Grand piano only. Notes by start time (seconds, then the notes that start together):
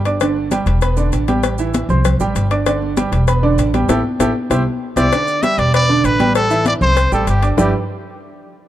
0.06 D4 D5 D6
0.21 D3 D4 D5
0.51 G3 G4 G5
0.82 B3 B4 B5
0.97 D3 D4 D5
1.28 G3 G4 G5
1.59 E3 E4 E5
1.90 C4 C5 C6
2.20 G3 G4 G5
2.51 D4 D5 D6
2.66 D3 D4 D5
2.97 G3 G4 G5
3.28 B3 B4 B5
3.43 D3 D4 D5
3.74 G3 G4 G5
3.89 E4 G4 A4
4.20 E4 G4 A4
4.51 E4 G4 C5
4.97 E4 G4 C5
5.13 D3 D4 D5
5.43 G3 G4 G5
5.74 B3 B4 B5
5.89 D3 D4 D5
6.20 G3 G4 G5
6.50 E3 E4 E5
6.81 C4 C5 C6
7.12 G3 G4 G5
7.42 D4 D5 D6
7.57 G3 D4 E4 G4 B4 D5